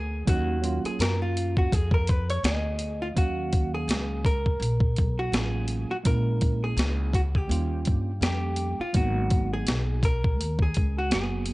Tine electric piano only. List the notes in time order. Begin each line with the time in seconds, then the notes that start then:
0.25 F#3 A#3 C#4 D#4
0.61 F#3 A#3 C#4 F4
3.14 F#3 A#3 C#4 F5
5.31 F3 A#3 C#4 F4
5.37 F#3
6.03 G#3 A#3 C#4 E4
7.48 G3 A#3 C#4 F4
8.21 G3 A#3 C#4 G4
8.93 F#3 A#3 B3 D#4
11.10 F#3 A#3 B3 F#4